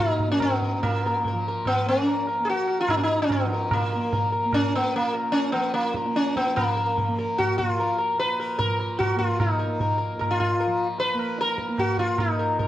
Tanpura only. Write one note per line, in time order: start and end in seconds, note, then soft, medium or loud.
0.00 0.80 A#2 medium
0.00 1.33 F3 medium
0.00 0.28 A#3 medium
0.28 1.85 A#3 medium
0.80 2.91 A#2 medium
1.33 3.44 F3 medium
1.85 2.40 A#3 medium
2.40 3.95 A#3 medium
2.91 5.00 A#2 medium
3.44 5.53 F3 medium
3.95 4.45 A#3 medium
4.45 6.06 A#3 medium
5.01 8.13 A#2 medium
5.54 6.56 F3 medium
6.06 7.08 A#3 medium
6.56 8.64 F3 medium
7.08 7.62 A#3 medium
7.62 9.16 A#3 medium
8.13 10.15 A#2 medium
8.64 10.66 F3 medium
9.16 9.66 A#3 medium
9.66 11.15 A#3 medium
10.15 12.17 A#2 medium
10.66 12.68 F3 medium
11.15 11.70 A#3 medium
11.70 12.68 A#3 medium
12.17 12.68 A#2 medium